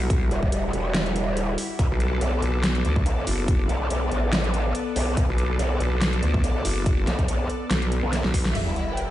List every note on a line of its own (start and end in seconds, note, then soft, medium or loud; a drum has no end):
0.00 0.30 B1 loud
0.00 1.75 G3 medium
0.00 1.75 E4 medium
0.00 1.75 F#4 medium
0.10 kick loud
0.10 closed hi-hat medium
0.31 0.51 E1 loud
0.31 closed hi-hat medium
0.43 kick medium
0.52 0.72 E1 medium
0.52 closed hi-hat medium
0.73 1.32 E1 loud
0.73 closed hi-hat medium
0.95 snare loud
0.95 closed hi-hat medium
1.06 closed hi-hat soft
1.16 closed hi-hat medium
1.32 1.56 D#1 loud
1.37 closed hi-hat medium
1.58 open hi-hat medium
1.79 1.89 B1 loud
1.79 8.51 B3 medium
1.79 8.51 A4 medium
1.79 8.51 D5 medium
1.79 kick loud
1.79 closed hi-hat medium
1.91 2.20 B1 medium
2.00 closed hi-hat soft
2.21 2.41 B1 loud
2.21 closed hi-hat medium
2.42 2.83 B1 loud
2.42 closed hi-hat medium
2.64 snare loud
2.64 closed hi-hat medium
2.75 closed hi-hat soft
2.85 3.04 D2 loud
2.85 closed hi-hat medium
2.96 kick loud
3.06 3.25 B1 loud
3.06 closed hi-hat medium
3.27 3.68 F#1 loud
3.27 open hi-hat medium
3.48 kick loud
3.48 closed hi-hat medium
3.69 3.89 B1 loud
3.69 closed hi-hat soft
3.90 4.10 B1 medium
3.90 closed hi-hat medium
4.11 4.73 A1 loud
4.11 closed hi-hat medium
4.33 snare loud
4.33 closed hi-hat medium
4.44 closed hi-hat soft
4.54 closed hi-hat medium
4.75 closed hi-hat medium
4.96 5.16 B1 medium
4.96 open hi-hat medium
5.17 5.27 B1 loud
5.17 kick loud
5.17 closed hi-hat medium
5.29 5.58 B1 medium
5.38 closed hi-hat medium
5.59 5.79 B1 loud
5.59 closed hi-hat medium
5.80 6.21 B1 loud
5.80 closed hi-hat medium
6.02 snare loud
6.02 closed hi-hat medium
6.13 closed hi-hat soft
6.23 6.42 D2 loud
6.23 closed hi-hat medium
6.34 kick loud
6.44 6.63 B1 loud
6.44 closed hi-hat medium
6.65 7.06 F#1 loud
6.65 open hi-hat loud
6.86 kick loud
6.86 closed hi-hat medium
7.07 7.27 B1 loud
7.07 snare medium
7.07 closed hi-hat medium
7.19 kick medium
7.19 closed hi-hat soft
7.28 7.48 B1 loud
7.28 closed hi-hat medium
7.50 closed hi-hat medium
7.71 8.01 B1 loud
7.71 snare loud
7.71 closed hi-hat medium
7.82 closed hi-hat soft
7.92 closed hi-hat medium
8.03 8.22 B1 loud
8.13 snare medium
8.13 closed hi-hat medium
8.24 8.54 B1 loud
8.24 snare medium
8.34 kick medium
8.34 open hi-hat loud
8.45 snare medium
8.55 9.11 E1 medium
8.55 9.11 G3 medium
8.55 9.11 E4 medium
8.55 9.11 F#4 medium
8.55 8.65 E5 medium
8.55 closed hi-hat medium
8.55 crash medium
8.55 sub drop medium
8.67 8.75 E4 medium
8.76 8.86 E4 medium
8.76 closed hi-hat soft
8.88 8.96 E4 medium
8.97 9.07 G5 medium
8.97 closed hi-hat medium